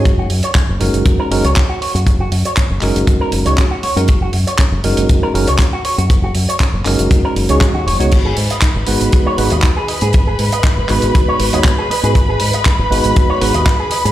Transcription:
<<
  \new Staff \with { instrumentName = "String section" } { \time 4/4 \key fis \mixolydian \tempo 4 = 119 r1 | r1 | r1 | r1 |
<b' b''>1~ | <b' b''>1~ | <b' b''>1 | }
  \new Staff \with { instrumentName = "Clean electric guitar" } { \time 4/4 \key fis \mixolydian r16 fis'16 r16 cis''16 cis'16 r4 ais'16 r16 cis''16 cis'16 fis'16 cis''16 fis'16 | r16 fis'16 r16 cis''16 cis'16 r4 ais'16 r16 cis''16 cis'16 fis'16 cis''16 fis'16 | r16 fis'16 r16 cis''16 cis'16 r4 ais'16 r16 cis''16 cis'16 fis'16 cis''16 fis'16 | r16 fis'16 r16 cis''16 cis'16 r4 ais'16 r16 cis''16 cis'16 fis'16 cis''16 fis'16 |
r16 gis'16 r16 dis''16 dis'16 r4 cis''16 r16 dis''16 dis'16 gis'16 dis''16 gis'16 | r16 gis'16 r16 dis''16 dis'16 r4 cis''16 r16 dis''16 dis'16 gis'16 dis''16 gis'16 | r16 gis'16 r16 dis''16 dis'16 r4 cis''16 r16 dis''16 dis'16 gis'16 dis''16 gis'16 | }
  \new Staff \with { instrumentName = "Tine electric piano" } { \time 4/4 \key fis \mixolydian r4. <gis cis' dis' fis' ais'>4 <gis cis' dis' fis' ais'>16 r4 r16 | r4. <gis cis' dis' fis' ais'>4~ <gis cis' dis' fis' ais'>16 <gis cis' dis' fis' cis''>16 r8. <gis cis' dis' fis' ais'>16 | r4. <gis cis' dis' fis' ais'>4 <gis cis' dis' fis' ais'>16 r4 r16 | r4. <gis cis' dis' fis' ais'>4~ <gis cis' dis' fis' ais'>16 <gis cis' dis' fis' gis'>16 <gis cis' dis' fis' dis''>16 r8 <gis b dis' fis' cis''>16 |
r4. <gis b dis' fis' b'>4 <gis b dis' fis' b'>16 r4 r16 | r4. <gis b dis' fis' b'>4~ <gis b dis' fis' b'>16 <gis b dis' fis' cis''>16 r8. <gis b dis' fis' b'>16 | r4. <gis b dis' fis' b'>4 <gis b dis' fis' b'>16 r4 r16 | }
  \new Staff \with { instrumentName = "Fingered electric bass" } { \clef bass \time 4/4 \key fis \mixolydian fis,,8 fis,16 r8 fis,,16 fis,,16 fis,,16 fis,,16 r16 fis,,16 cis,16 r8. fis,16 | fis,,8 fis,16 r8 fis,,16 fis,,16 fis,,16 fis,,16 r16 fis,,16 cis,16 r8. fis,16 | fis,,8 fis,16 r8 fis,,16 fis,,16 fis,,16 fis,,16 r16 fis,,16 cis,16 r8. fis,16 | fis,,8 fis,16 r8 fis,,16 fis,,16 fis,,16 fis,,16 r16 fis,,16 cis,16 r16 dis,16 fis,,16 cis,16 |
gis,,8 gis,16 r8 gis,,16 gis,,16 gis,,16 gis,,16 r16 gis,,16 dis,16 r8. gis,16 | gis,,8 gis,16 r8 gis,,16 gis,,16 gis,,16 gis,,16 r16 gis,,16 dis,16 r8. gis,16 | gis,,8 gis,16 r8 gis,,16 gis,,16 gis,,16 gis,,16 r16 gis,,16 dis,16 r8. gis,16 | }
  \new DrumStaff \with { instrumentName = "Drums" } \drummode { \time 4/4 <hh bd>8 hho16 hh16 <hc hh bd>8 hho16 hh16 <hh bd>8 hho16 hh16 <hc hh bd>8 hho16 hh16 | <hh bd>8 hho16 hh16 <hc hh bd>8 <hc hho>16 hh16 <hh bd>8 hho16 hh16 <hc hh bd>8 hho16 hh16 | <hh bd>8 hho16 hh16 <hc hh bd>8 hho16 hh16 <hh bd>8 hho16 hh16 <hc hh bd>8 hho16 hh16 | <hh bd>8 hho16 hh16 <hc hh bd>8 <hc hho>16 hh16 <hh bd>8 hho16 hh16 <hc hh bd>8 hho16 hh16 |
<cymc hh bd>8 hho16 hh16 <hc hh bd>8 hho16 hh16 <hh bd>8 hho16 hh16 <hc hh bd>8 hho16 hh16 | <hh bd>8 hho16 hh16 <hc hh bd>8 <hc hho>16 hh16 <hh bd>8 hho16 hh16 <hc hh bd>8 hho16 hh16 | <hh bd>8 hho16 hh16 <hc hh bd>8 hho16 hh16 <hh bd>8 hho16 hh16 <hc hh bd>8 hho16 hh16 | }
>>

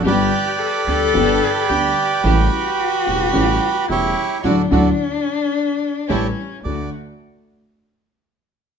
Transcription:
<<
  \new Staff \with { instrumentName = "Bandoneon" } { \time 4/4 \key d \major \tempo 4 = 109 << { d''1 | r2. cis''4 | <fis' a' d''>8 <fis' a' d''>8 r2 <g' a' cis''>8 r8 | d''8 r2. r8 | } \\ { <g' b'>1~ | <g' b'>2. <e' g'>4 | r1 | r1 | } >> }
  \new Staff \with { instrumentName = "Cello" } { \time 4/4 \key d \major g'4 a'8 a'4. g'4 | fis'2. e'4 | d'2. cis'4 | a8 r2. r8 | }
  \new Staff \with { instrumentName = "String section" } { \time 4/4 \key d \major <b d' g'>8 r4 <b d' g'>8 <b d' g'>8 r8 <b d' g'>8 r8 | <a cis' g'>8 r4 <a cis' g'>8 <a cis' g'>8 r8 <a cis' g'>8 r8 | <a d' fis'>8 <a d' fis'>8 r2 <a cis' e'>8 r8 | <a d' fis'>8 r2. r8 | }
  \new Staff \with { instrumentName = "Upright piano" } { \clef bass \time 4/4 \key d \major <g,, g, d g b g'>8 r4 <d, d g b g'>8 <g,, g, d g b g'>8 r8 <d, d g b g'>8 r8 | <a,, a, cis g a e'>8 r4 <e,, e, cis g a e'>8 <a,, a, cis g a e'>8 r8 <e,, e, cis g a e'>8 r8 | <a, d fis>8 <a, d fis>8 r2 <e g a>8 r8 | <d, a d' fis'>8 r2. r8 | }
  \new Staff \with { instrumentName = "Upright bass" } { \clef bass \time 4/4 \key d \major g,,8 r4 d,8 g,,8 r8 d,8 r8 | a,,8 r4 e,,8 a,,8 r8 e,,8 r8 | d,8 d,8 r2 a,,8 r8 | d,8 r2. r8 | }
>>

